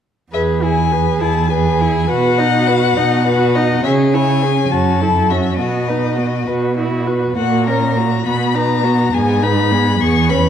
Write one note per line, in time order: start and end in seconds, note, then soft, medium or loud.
0.32 1.11 E2 soft
0.32 0.64 G#4 soft
0.32 0.64 B4 soft
0.32 0.42 E5 soft
0.63 0.94 E4 soft
0.63 0.93 G#4 soft
0.63 1.20 G#5 medium
0.92 1.23 G#4 soft
0.92 1.22 B4 soft
1.20 1.99 E2 soft
1.20 1.50 E4 soft
1.20 1.50 G#4 soft
1.20 1.51 A5 medium
1.50 1.82 G#4 soft
1.50 1.81 B4 soft
1.50 2.10 G#5 medium
1.79 2.09 E4 soft
1.79 2.08 G#4 soft
2.09 2.87 B2 soft
2.09 2.41 F#4 soft
2.09 2.40 B4 soft
2.09 3.83 F#5 medium
2.38 2.71 D#4 soft
2.38 2.69 D#5 soft
2.67 2.99 F#4 soft
2.67 2.98 B4 soft
2.97 3.74 B2 medium
2.97 3.26 D#4 soft
2.97 3.26 D#5 soft
3.26 3.57 F#4 soft
3.26 3.57 B4 soft
3.55 3.84 D#4 soft
3.55 3.84 D#5 soft
3.83 4.60 C#3 medium
3.83 4.15 C#4 soft
3.83 4.16 G#4 soft
3.83 3.91 E5 medium
4.13 4.44 E4 soft
4.13 4.44 C#5 soft
4.13 4.73 G#5 medium
4.43 4.72 C#4 soft
4.43 4.70 G#4 soft
4.71 5.49 F#2 soft
4.71 5.03 C#4 soft
4.71 5.02 F#4 soft
4.71 5.32 A5 medium
5.00 5.32 E4 soft
5.00 5.31 A4 soft
5.30 5.58 C#4 soft
5.30 5.58 F#4 soft
5.30 5.58 E5 medium
5.58 6.37 B2 soft
5.58 5.91 B3 soft
5.58 5.90 F#4 soft
5.58 6.46 D#5 soft
5.89 6.20 D#4 soft
5.89 6.18 B4 soft
6.16 6.47 B3 soft
6.16 6.49 F#4 soft
6.47 7.27 B2 soft
6.47 6.76 F#4 soft
6.47 6.76 B4 soft
6.77 7.08 E4 soft
6.77 7.09 F#4 soft
7.07 7.36 F#4 soft
7.07 7.37 B4 soft
7.37 8.16 A#2 soft
7.37 7.68 A#3 soft
7.37 7.69 F#4 soft
7.37 7.65 F#5 medium
7.66 7.97 C#4 soft
7.66 7.99 A#4 soft
7.66 8.25 A#5 medium
7.96 8.24 A#3 soft
7.96 8.25 F#4 soft
8.24 9.04 B2 soft
8.24 8.56 B3 soft
8.24 8.57 F#4 soft
8.24 8.56 B5 medium
8.54 8.85 D#4 soft
8.54 8.87 B4 soft
8.54 9.16 A#5 medium
8.83 9.12 B3 soft
8.83 9.13 F#4 soft
9.13 9.91 G#2 medium
9.13 9.43 B3 soft
9.13 9.45 G#4 soft
9.13 9.44 G#5 medium
9.42 9.73 D#4 soft
9.42 9.73 B4 soft
9.42 10.02 B5 medium
9.71 10.00 B3 soft
9.71 10.01 G#4 soft
10.00 10.49 E2 medium
10.00 10.31 B3 soft
10.00 10.31 G#4 soft
10.00 10.31 C#6 medium
10.29 10.49 C#4 soft
10.29 10.49 B4 soft
10.29 10.49 B5 medium